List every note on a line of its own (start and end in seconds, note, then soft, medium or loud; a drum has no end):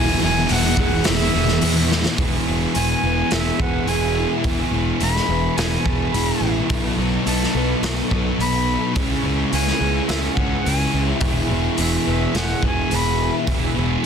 0.00 0.15 E1 medium
0.00 0.19 E2 medium
0.00 0.20 B2 loud
0.00 0.20 E3 loud
0.00 0.22 E3 loud
0.00 1.34 F#3 medium
0.00 0.21 G#3 loud
0.00 0.22 B3 loud
0.00 0.23 E4 loud
0.00 0.20 G#5 loud
0.20 0.44 E1 medium
0.20 0.46 E2 medium
0.20 0.37 B2 medium
0.20 0.49 E3 medium
0.20 0.34 E3 medium
0.20 0.50 G#3 medium
0.20 0.51 B3 medium
0.20 0.52 E4 loud
0.20 0.53 G#5 loud
0.35 0.48 B2 medium
0.35 0.49 E3 medium
0.48 0.72 E1 medium
0.48 0.75 E2 loud
0.48 0.76 B2 loud
0.48 0.77 E3 medium
0.48 0.78 E3 loud
0.48 0.79 G#3 medium
0.48 1.62 B3 medium
0.48 open hi-hat medium
0.52 0.80 B3 medium
0.52 0.80 E4 loud
0.52 1.07 F#5 medium
0.76 1.00 E1 medium
0.76 1.19 E2 medium
0.76 0.92 B2 medium
0.76 1.20 E3 medium
0.76 0.89 E3 medium
0.76 0.92 G#3 medium
0.76 1.34 G#4 medium
0.76 kick medium
0.81 0.91 B3 medium
0.81 0.91 E4 medium
0.91 1.20 B2 medium
0.91 1.17 E3 medium
0.91 muted overdriven electric guitar stroke soft
1.04 1.29 E1 loud
1.04 1.90 F#4 medium
1.04 1.90 E5 loud
1.04 snare loud
1.04 open hi-hat medium
1.19 1.32 B2 medium
1.19 1.34 E3 medium
1.19 1.35 B3 medium
1.19 1.36 E4 medium
1.23 1.34 G#3 medium
1.32 1.57 E1 medium
1.32 1.59 E2 medium
1.32 1.48 B2 medium
1.32 1.61 E3 medium
1.32 1.44 E3 medium
1.32 1.48 G#3 medium
1.32 1.47 B3 medium
1.32 2.19 G#4 medium
1.37 1.47 E4 medium
1.46 1.60 B2 medium
1.46 1.61 E3 medium
1.46 muted overdriven electric guitar stroke soft
1.46 snare soft
1.60 1.89 E2 medium
1.60 2.07 E2 loud
1.60 1.76 B2 loud
1.60 1.88 E3 medium
1.60 1.73 E3 loud
1.60 1.89 G#3 loud
1.60 2.18 B3 medium
1.60 open hi-hat medium
1.64 1.90 B3 loud
1.64 1.91 E4 loud
1.74 1.90 B2 medium
1.74 1.91 E3 medium
1.89 2.16 E2 medium
1.89 2.17 B2 medium
1.89 2.16 E3 medium
1.89 2.18 E3 medium
1.89 2.05 G#3 medium
1.89 2.04 B3 medium
1.89 2.02 E4 medium
1.89 2.19 F#4 medium
1.89 snare medium
2.03 2.16 G#3 medium
2.03 2.17 B3 medium
2.03 2.16 E4 medium
2.03 snare medium
2.17 2.37 E1 medium
2.17 2.74 E2 medium
2.17 2.48 B2 medium
2.17 3.29 E3 medium
2.17 2.73 G#3 medium
2.17 2.75 B3 medium
2.17 2.47 B3 medium
2.17 2.75 E4 loud
2.17 2.77 G#4 loud
2.17 kick loud
2.17 open hi-hat medium
2.21 2.46 E3 loud
2.46 2.65 E1 medium
2.46 2.75 B2 medium
2.46 2.77 E3 medium
2.46 2.76 B3 medium
2.73 2.94 E1 medium
2.73 3.86 E2 medium
2.73 3.04 B2 medium
2.73 3.02 E3 loud
2.73 3.30 G#3 medium
2.73 3.31 B3 medium
2.73 3.04 B3 medium
2.73 3.31 E4 medium
2.73 3.32 G#4 medium
2.73 3.35 G#5 medium
2.73 open hi-hat medium
3.02 3.22 E1 medium
3.02 3.61 B2 medium
3.02 3.58 E3 medium
3.02 3.61 B3 medium
3.30 3.50 E1 medium
3.30 4.15 E3 medium
3.30 3.86 G#3 medium
3.30 3.88 B3 medium
3.30 3.88 E4 medium
3.30 3.89 G#4 medium
3.30 4.73 G#4 medium
3.30 3.62 E5 medium
3.30 snare loud
3.30 open hi-hat soft
3.59 3.78 E1 medium
3.59 3.87 B2 medium
3.59 3.89 E3 medium
3.59 3.89 B3 medium
3.59 3.89 F#5 medium
3.59 kick medium
3.87 4.24 E1 medium
3.87 4.43 E2 medium
3.87 4.45 B2 medium
3.87 4.46 E3 medium
3.87 4.44 G#3 medium
3.87 4.46 B3 medium
3.87 4.45 B3 medium
3.87 4.46 E4 medium
3.87 4.46 G#4 medium
3.87 4.30 G#5 medium
3.87 open hi-hat soft
4.18 5.58 E4 medium
4.44 4.63 E1 medium
4.44 4.99 E2 medium
4.44 4.74 B2 medium
4.44 5.29 E3 medium
4.44 4.72 E3 loud
4.44 5.01 G#3 medium
4.44 4.74 B3 medium
4.44 5.03 B3 medium
4.44 5.03 E4 medium
4.44 5.04 G#4 loud
4.44 kick loud
4.44 open hi-hat soft
4.72 4.90 E1 medium
4.72 5.01 B2 medium
4.72 5.02 E3 medium
4.72 5.02 B3 medium
5.00 5.19 E1 medium
5.00 5.57 E2 medium
5.00 5.30 B2 medium
5.00 5.27 E3 medium
5.00 5.57 G#3 medium
5.00 5.30 B3 medium
5.00 5.58 B3 medium
5.00 5.58 B5 loud
5.00 open hi-hat medium
5.04 5.58 E4 medium
5.04 5.59 G#4 medium
5.17 snare soft
5.28 5.47 E1 medium
5.28 5.86 B2 medium
5.28 5.84 E3 medium
5.28 5.85 B3 medium
5.57 5.76 E1 medium
5.57 6.42 E3 medium
5.57 6.12 G#3 medium
5.57 6.15 B3 medium
5.57 6.14 E4 medium
5.57 6.70 G#4 medium
5.57 6.15 G#4 loud
5.57 5.87 G#5 medium
5.57 snare loud
5.57 open hi-hat medium
5.85 6.04 E1 medium
5.85 6.13 B2 medium
5.85 6.15 E3 medium
5.85 6.14 B3 medium
5.85 6.11 A5 loud
5.85 kick medium
6.12 6.31 E1 medium
6.12 6.68 E2 medium
6.12 6.69 B2 medium
6.12 6.68 G#3 medium
6.12 6.99 B3 medium
6.12 6.71 B3 medium
6.12 6.69 E4 medium
6.12 6.52 B5 medium
6.12 open hi-hat soft
6.16 6.70 E3 medium
6.16 6.70 G#4 medium
6.41 6.59 A1 medium
6.41 6.71 E4 medium
6.69 6.88 B1 medium
6.69 7.54 B2 medium
6.69 7.24 B2 medium
6.69 7.55 D#3 medium
6.69 7.26 F#3 medium
6.69 7.24 F#3 medium
6.69 7.00 F#3 medium
6.69 7.26 B3 loud
6.69 6.98 B3 medium
6.69 7.26 D#4 loud
6.69 7.27 A4 loud
6.69 kick loud
6.69 open hi-hat medium
6.98 7.16 B1 medium
6.98 7.26 F#3 medium
6.98 7.27 B3 medium
6.98 7.55 B3 medium
7.25 7.45 B1 medium
7.25 7.82 B2 medium
7.25 7.83 F#3 medium
7.25 8.38 F#3 medium
7.25 7.56 F#3 medium
7.25 7.84 B3 medium
7.25 7.54 B3 medium
7.25 7.84 D#4 medium
7.25 7.84 A4 medium
7.25 7.79 A5 loud
7.25 open hi-hat medium
7.43 snare soft
7.54 7.73 B1 medium
7.54 8.13 F#3 medium
7.54 8.10 B3 medium
7.54 8.12 B3 medium
7.82 8.01 B1 medium
7.82 8.68 B2 medium
7.82 8.68 D#3 medium
7.82 8.38 F#3 medium
7.82 8.41 B3 loud
7.82 8.41 D#4 medium
7.82 8.96 A4 medium
7.82 8.42 A4 loud
7.82 snare loud
7.82 open hi-hat soft
8.11 8.30 B1 medium
8.11 8.40 F#3 medium
8.11 8.42 B3 medium
8.11 8.97 B3 medium
8.11 kick medium
8.39 8.76 B1 medium
8.39 8.95 B2 medium
8.39 8.94 F#3 medium
8.39 8.96 F#3 medium
8.39 8.95 F#3 medium
8.39 8.97 B3 medium
8.39 8.95 D#4 medium
8.39 8.93 B5 loud
8.39 open hi-hat soft
8.43 8.96 A4 medium
8.68 8.96 D#4 medium
8.95 9.14 C#2 medium
8.95 9.50 C#3 medium
8.95 9.81 C#3 medium
8.95 9.26 G#3 medium
8.95 9.51 G#3 medium
8.95 9.25 B3 medium
8.95 9.52 C#4 loud
8.95 9.22 C#4 medium
8.95 9.54 E4 medium
8.95 kick loud
8.95 open hi-hat medium
8.99 9.54 G#4 loud
9.23 9.43 C#2 medium
9.23 9.52 G#3 medium
9.23 9.52 B3 medium
9.23 9.53 C#4 medium
9.52 9.71 C#2 medium
9.52 10.08 C#3 medium
9.52 10.09 G#3 medium
9.52 9.82 G#3 medium
9.52 9.81 B3 medium
9.52 10.09 C#4 medium
9.52 9.78 C#4 medium
9.52 10.11 E4 medium
9.52 10.11 G#4 medium
9.52 10.05 G#5 medium
9.52 open hi-hat medium
9.67 snare soft
9.79 9.99 C#2 medium
9.79 10.38 G#3 medium
9.79 10.38 B3 medium
9.79 10.35 C#4 medium
10.07 10.27 C#2 medium
10.07 10.93 C#3 medium
10.07 10.65 G#3 medium
10.07 10.66 C#4 medium
10.07 12.34 G#4 medium
10.07 10.35 E5 medium
10.07 snare loud
10.07 open hi-hat medium
10.11 10.67 E4 medium
10.11 10.68 G#4 loud
10.34 10.55 C#2 medium
10.34 10.66 C#4 medium
10.34 10.64 F#5 medium
10.34 kick medium
10.39 10.66 G#3 medium
10.62 11.20 C#3 medium
10.62 11.21 G#3 medium
10.62 11.22 B3 medium
10.62 11.06 G#5 medium
10.66 10.84 C#2 medium
10.66 11.23 G#3 medium
10.66 11.21 C#4 medium
10.66 11.23 E4 medium
10.66 11.23 G#4 medium
10.66 open hi-hat soft
10.94 11.12 C#2 medium
10.94 13.20 E4 medium
11.20 11.40 E1 medium
11.20 11.78 E2 medium
11.20 11.50 B2 medium
11.20 12.33 E3 medium
11.20 11.49 E3 loud
11.20 11.76 G#3 medium
11.20 11.50 B3 medium
11.20 11.78 B3 medium
11.20 11.79 E4 medium
11.20 11.80 G#4 medium
11.20 kick loud
11.20 open hi-hat medium
11.49 11.68 E1 medium
11.49 11.78 B2 medium
11.49 11.81 E3 medium
11.49 11.78 B3 medium
11.77 11.97 E1 medium
11.77 12.90 E2 medium
11.77 12.08 B2 medium
11.77 12.34 G#3 medium
11.77 12.06 B3 medium
11.77 12.35 B3 medium
11.77 12.35 E4 medium
11.77 12.35 G#4 medium
11.77 12.05 E5 medium
11.77 open hi-hat medium
11.81 12.06 E3 medium
12.06 12.25 E1 medium
12.06 12.65 B2 soft
12.06 12.62 E3 medium
12.06 12.63 B3 medium
12.06 12.38 E5 medium
12.33 12.53 E1 medium
12.33 13.18 E3 medium
12.33 12.88 G#3 medium
12.33 12.91 B3 medium
12.33 12.91 E4 medium
12.33 13.76 G#4 medium
12.33 12.91 G#4 loud
12.33 12.63 F#5 loud
12.33 snare loud
12.33 open hi-hat medium
12.63 12.81 E1 medium
12.63 12.91 B2 medium
12.63 12.92 E3 medium
12.63 12.91 B3 medium
12.63 kick medium
12.67 12.96 G#5 medium
12.90 13.29 E1 medium
12.90 13.46 E2 medium
12.90 13.48 B2 medium
12.90 13.49 E3 medium
12.90 13.46 G#3 medium
12.90 13.48 B3 medium
12.90 13.48 E4 medium
12.90 13.49 G#4 medium
12.90 open hi-hat soft
12.95 13.35 B5 loud
13.20 14.06 E4 medium
13.47 13.66 E1 medium
13.47 14.02 E2 medium
13.47 13.77 B2 medium
13.47 14.06 E3 loud
13.47 13.74 E3 medium
13.47 14.02 G#3 medium
13.47 14.04 B3 medium
13.47 14.04 E4 loud
13.47 14.05 G#4 loud
13.47 kick loud
13.47 open hi-hat medium
13.75 13.95 E1 medium
13.75 14.04 B2 medium
13.75 14.06 E3 medium
13.75 14.06 B3 medium